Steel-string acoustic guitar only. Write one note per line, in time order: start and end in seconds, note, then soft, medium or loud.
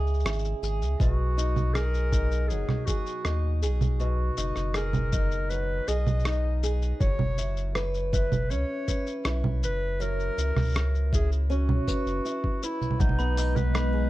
0.00 1.00 C#3 medium
0.00 2.50 G#3 medium
0.00 0.24 E4 medium
0.00 0.62 G#4 medium
0.25 1.07 E4 medium
0.63 1.75 G#4 medium
1.00 3.98 B2 medium
1.37 2.11 D#4 medium
1.75 2.87 G#4 medium
2.12 3.24 D#4 medium
2.50 5.50 F#3 medium
2.88 3.61 G#4 medium
3.25 4.36 D#4 medium
3.62 4.74 G#4 medium
4.00 7.00 B2 medium
4.37 5.11 D#4 medium
4.75 5.86 G#4 medium
5.12 6.24 D#4 medium
5.50 7.00 F#3 medium
5.88 6.62 G#4 medium
6.25 7.08 D#4 medium
6.63 7.08 G#4 medium
7.01 10.00 F#3 medium
7.38 8.11 E4 medium
7.75 8.87 B4 medium
8.13 9.24 E4 medium
8.50 11.48 C#4 medium
8.88 11.53 B4 medium
9.26 10.36 E4 medium
10.00 13.50 F#3 medium
10.38 11.11 E4 medium
11.12 12.24 E4 medium
11.50 13.07 C#4 medium
11.87 12.63 B4 medium
12.25 13.08 E4 medium
12.63 13.92 B4 medium
13.00 14.10 B2 medium
13.19 13.56 B3 medium
13.37 13.73 D#4 medium
13.56 14.10 B3 medium
13.74 14.10 D#4 medium
13.93 14.10 G#4 medium